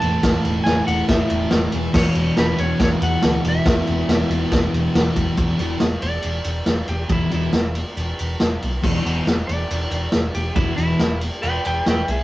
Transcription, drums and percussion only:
0.02 ride medium
0.23 kick loud
0.23 snare loud
0.23 ride loud
0.45 ride medium
0.66 snare loud
0.66 ride medium
0.88 ride medium
1.08 kick loud
1.08 snare loud
1.08 ride loud
1.30 ride medium
1.51 snare loud
1.51 ride loud
1.72 ride medium
1.94 kick loud
1.94 snare loud
1.94 crash loud
2.15 ride medium
2.37 snare loud
2.37 ride loud
2.58 ride medium
2.80 kick loud
2.80 snare loud
2.80 ride loud
3.02 ride medium
3.22 snare loud
3.22 ride loud
3.45 ride medium
3.66 kick loud
3.66 snare loud
3.66 ride loud
3.87 ride medium
4.09 snare loud
4.09 ride loud
4.31 ride medium
4.51 kick loud
4.51 snare loud
4.51 ride loud
4.74 ride medium
4.95 snare loud
4.95 ride loud
5.16 kick medium
5.16 ride medium
5.37 kick loud
5.37 ride loud
5.59 ride medium
5.80 snare loud
5.80 ride loud
6.02 ride medium
6.22 ride loud
6.44 ride medium
6.66 snare loud
6.66 ride loud
6.88 ride medium
7.09 kick loud
7.09 ride loud
7.31 ride medium
7.52 snare loud
7.52 ride medium
7.75 ride medium
7.97 ride medium
8.19 ride medium
8.40 snare loud
8.40 ride medium
8.62 ride medium
8.84 kick loud
8.84 crash loud
9.06 ride medium
9.27 snare loud
9.27 ride loud
9.49 ride medium
9.71 ride loud
9.91 ride medium
10.12 snare loud
10.12 ride medium
10.35 ride medium
10.56 kick loud
10.56 ride loud
10.78 ride medium
10.99 snare loud
10.99 ride loud
11.21 ride medium
11.43 ride loud
11.65 ride medium
11.86 snare loud
11.86 ride medium
12.08 ride medium

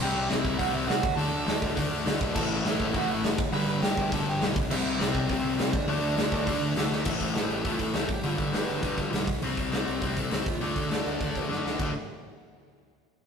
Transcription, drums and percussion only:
0.30 snare loud
0.30 open hi-hat medium
0.45 kick loud
0.59 kick medium
0.59 open hi-hat medium
0.89 snare loud
0.89 open hi-hat medium
1.03 kick loud
1.18 open hi-hat medium
1.47 snare loud
1.47 open hi-hat medium
1.62 kick medium
1.77 kick medium
1.77 open hi-hat medium
2.06 snare loud
2.06 open hi-hat medium
2.21 kick loud
2.36 kick loud
2.36 crash loud
2.65 snare loud
2.65 open hi-hat medium
2.80 kick medium
2.94 kick loud
2.94 open hi-hat medium
3.23 snare loud
3.23 open hi-hat medium
3.38 kick loud
3.53 open hi-hat medium
3.82 snare loud
3.82 open hi-hat medium
3.97 kick medium
4.12 kick loud
4.12 open hi-hat medium
4.41 snare loud
4.41 open hi-hat medium
4.56 kick loud
4.71 crash loud
5.00 snare loud
5.00 open hi-hat medium
5.15 kick medium
5.29 kick loud
5.29 open hi-hat medium
5.59 snare loud
5.59 open hi-hat medium
5.73 kick loud
5.88 open hi-hat medium
6.17 snare loud
6.17 open hi-hat medium
6.32 kick medium
6.47 kick medium
6.47 open hi-hat medium
6.76 snare loud
6.76 open hi-hat medium
6.92 snare medium
7.05 kick loud
7.05 crash loud
7.20 kick medium
7.20 open hi-hat medium
7.35 snare loud
7.35 open hi-hat medium
7.50 open hi-hat medium
7.65 kick loud
7.65 open hi-hat medium
7.79 kick medium
7.79 open hi-hat medium
7.93 snare loud
7.93 open hi-hat medium
8.09 kick loud
8.09 open hi-hat medium
8.24 open hi-hat medium
8.38 kick medium
8.38 open hi-hat medium
8.53 snare loud
8.53 open hi-hat medium
8.68 open hi-hat medium
8.83 kick loud
8.83 open hi-hat medium
8.98 kick medium
8.98 open hi-hat medium
9.13 snare loud
9.13 open hi-hat medium
9.27 kick loud
9.27 open hi-hat medium
9.42 open hi-hat medium
9.57 kick medium
9.57 open hi-hat medium
9.72 snare loud
9.72 open hi-hat medium
9.87 open hi-hat medium
10.02 kick loud
10.02 open hi-hat medium
10.17 kick medium
10.17 open hi-hat medium
10.31 snare loud
10.31 open hi-hat medium
10.46 kick loud
10.46 open hi-hat medium
10.61 open hi-hat medium
10.76 kick medium
10.76 open hi-hat medium
10.91 snare loud
10.91 open hi-hat medium
11.06 open hi-hat medium
11.21 kick loud
11.21 open hi-hat medium
11.35 kick medium
11.35 open hi-hat medium
11.52 snare medium
11.66 snare medium
11.79 kick loud
11.79 crash medium

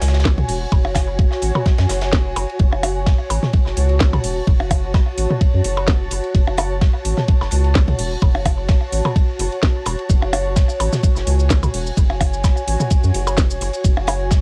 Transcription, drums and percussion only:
0.02 snare medium
0.02 open hi-hat medium
0.02 ride medium
0.08 snare medium
0.08 ride medium
0.14 snare medium
0.14 ride medium
0.20 snare medium
0.20 ride medium
0.25 kick loud
0.25 snare medium
0.25 snare loud
0.38 mid tom medium
0.38 ride soft
0.48 open hi-hat medium
0.72 kick loud
0.72 ride medium
0.72 percussion blips medium
0.85 percussion blips medium
0.95 kick medium
0.95 snare medium
0.95 open hi-hat medium
0.95 ride medium
0.95 percussion blips medium
1.19 kick loud
1.19 ride medium
1.32 snare soft
1.42 open hi-hat medium
1.42 ride medium
1.55 mid tom medium
1.55 percussion blips medium
1.66 kick loud
1.66 snare medium
1.66 ride medium
1.78 snare loud
1.78 ride medium
1.89 snare medium
1.89 open hi-hat medium
1.89 ride medium
2.01 snare loud
2.01 ride medium
2.12 kick loud
2.12 snare loud
2.12 ride medium
2.36 open hi-hat medium
2.36 ride medium
2.36 percussion blips medium
2.49 ride soft
2.59 kick loud
2.59 ride medium
2.73 percussion blips medium
2.83 open hi-hat medium
2.83 ride medium
2.83 percussion blips medium
3.06 kick loud
3.06 snare loud
3.06 ride medium
3.30 open hi-hat medium
3.30 ride medium
3.30 percussion blips medium
3.43 snare soft
3.43 mid tom medium
3.53 kick loud
3.53 ride medium
3.66 snare soft
3.77 open hi-hat medium
3.77 ride medium
3.89 ride soft
4.00 kick loud
4.00 snare loud
4.00 ride medium
4.13 mid tom medium
4.13 ride soft
4.13 percussion blips medium
4.24 open hi-hat medium
4.47 kick loud
4.47 ride medium
4.60 percussion blips medium
4.71 kick medium
4.71 open hi-hat medium
4.71 ride medium
4.71 percussion blips medium
4.94 kick loud
4.94 snare loud
4.94 ride medium
4.94 percussion blips medium
5.18 open hi-hat medium
5.18 ride medium
5.30 mid tom medium
5.41 kick loud
5.41 ride medium
5.64 open hi-hat loud
5.64 ride medium
5.77 ride soft
5.77 percussion blips medium
5.87 kick loud
5.87 snare loud
5.87 ride medium
6.11 open hi-hat loud
6.11 ride medium
6.24 ride soft
6.35 kick loud
6.35 ride medium
6.47 percussion blips medium
6.57 open hi-hat loud
6.57 ride medium
6.57 percussion blips medium
6.81 kick loud
6.81 snare loud
6.81 ride medium
7.05 open hi-hat medium
7.05 ride medium
7.17 snare soft
7.17 mid tom medium
7.28 kick loud
7.28 ride medium
7.41 snare soft
7.41 percussion blips medium
7.51 open hi-hat loud
7.51 ride medium
7.64 ride soft
7.75 kick loud
7.75 snare loud
7.75 ride medium
7.88 mid tom medium
7.88 ride soft
7.99 open hi-hat medium
8.22 kick loud
8.22 ride medium
8.22 percussion blips medium
8.35 percussion blips medium
8.45 kick medium
8.45 open hi-hat medium
8.45 ride medium
8.45 percussion blips medium
8.69 kick loud
8.69 snare loud
8.69 ride medium
8.92 open hi-hat medium
8.92 ride medium
9.05 mid tom medium
9.05 percussion blips medium
9.16 kick loud
9.16 ride medium
9.39 open hi-hat medium
9.39 ride medium
9.52 ride soft
9.63 kick loud
9.63 snare loud
9.63 ride medium
9.86 open hi-hat medium
9.86 ride medium
9.86 percussion blips medium
9.99 ride soft
10.10 kick loud
10.10 ride medium
10.10 shaker medium
10.22 percussion blips medium
10.33 open hi-hat medium
10.33 ride medium
10.33 percussion blips medium
10.56 kick loud
10.56 snare loud
10.56 ride medium
10.56 shaker medium
10.69 shaker soft
10.80 open hi-hat medium
10.80 ride medium
10.80 percussion blips medium
10.93 snare soft
10.93 mid tom medium
10.93 shaker soft
11.03 kick loud
11.03 ride medium
11.03 shaker medium
11.16 snare soft
11.16 shaker soft
11.27 open hi-hat medium
11.27 ride medium
11.40 ride soft
11.40 shaker soft
11.50 kick loud
11.50 snare loud
11.50 ride medium
11.50 shaker medium
11.63 mid tom medium
11.63 ride soft
11.63 percussion blips medium
11.63 shaker soft
11.74 open hi-hat medium
11.87 shaker soft
11.97 kick loud
11.97 ride medium
11.97 shaker medium
12.10 percussion blips medium
12.21 kick medium
12.21 open hi-hat medium
12.21 ride medium
12.21 percussion blips medium
12.33 shaker soft
12.44 kick loud
12.44 snare loud
12.44 ride medium
12.44 percussion blips medium
12.44 shaker medium
12.57 shaker soft
12.68 open hi-hat medium
12.68 ride medium
12.80 mid tom medium
12.80 shaker soft
12.90 kick loud
12.90 ride medium
12.90 shaker medium
13.04 shaker soft
13.14 open hi-hat medium
13.14 ride medium
13.27 ride soft
13.27 percussion blips medium
13.27 shaker soft
13.37 kick loud
13.37 snare loud
13.37 ride medium
13.37 shaker medium
13.51 shaker soft
13.61 open hi-hat medium
13.61 ride medium
13.73 ride soft
13.73 shaker soft
13.84 kick loud
13.84 ride medium
13.84 shaker medium
13.97 percussion blips medium
14.07 open hi-hat medium
14.07 ride medium
14.07 percussion blips medium
14.31 kick loud
14.31 snare loud
14.31 ride medium
14.31 shaker medium

